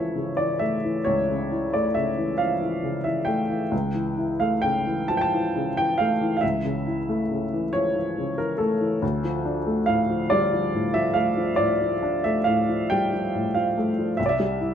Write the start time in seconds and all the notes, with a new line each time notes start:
Already playing: C#2 C#3 E3 F3 A3 E4 C#5 E5
0.15 C#3
0.37 E3 D5
0.59 A3 E5
0.84 E3
1.04 C#2 C#5
1.29 C#3
1.51 E4
1.74 A3 D5
1.94 C#3 E5
2.18 E3
2.38 F3 F5
2.61 E3
2.83 C#3
3.04 E3 E5
3.25 A3 G5
3.49 E3
3.71 C#2
3.94 E3
4.18 E4
4.40 A3 F5
4.62 C#3 G5
4.87 E3
5.08 F3 A5
5.17 G5 A5
5.33 E3
5.56 C#3
5.77 E3 G5
5.98 A3 F5
6.21 E3
6.37 F5
6.41 C#2 E5
6.65 C#3
6.87 E4
7.09 A3
7.31 C#3
7.53 E3
7.73 F3 C#5
7.96 E3
8.18 C#3
8.38 E3 A#4
8.58 A3 A4
8.81 E3
9.02 D2
9.24 F3
9.45 D4
9.67 A3
9.86 A2 F5
10.10 F3
10.30 G3 D5
10.54 F3
10.74 A2
10.94 F3 E5
11.14 A3 F5
11.37 F3
11.56 A2 D5
11.81 F3
12.03 D4
12.24 A3 E5
12.44 A2 F5
12.69 F3
12.90 G3 G5
13.13 F3
13.35 A2
13.54 F3 F5
13.78 A3
13.98 F3
14.17 C2 E5
14.26 D5 E5
14.40 G3
14.61 E4